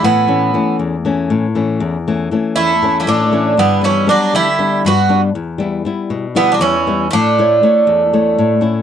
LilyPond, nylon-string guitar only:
\new Staff \with { instrumentName = "Nylon-string guitar" } { \time 7/8 \key a \mixolydian \tempo 4 = 119 a,8 <e a cis'>8 <e a cis'>8 e,8 <e a cis'>8 a,8 <e a cis'>8 | e,8 <e a cis'>8 <e a cis'>8 e,8 <e a cis'>8 a,8 <e a cis'>8 | g,8 <g b d'>8 <g b d'>8 d8 <g b d'>8 g,8 <g b d'>8 | e,8 <g b e'>8 <g b e'>8 b,8 <g b e'>8 e,8 <g b e'>8 |
a,8 <a e' cis''>8 <a e' cis''>8 e,8 <a e' cis''>8 a,8 <a cis' e'>8 | }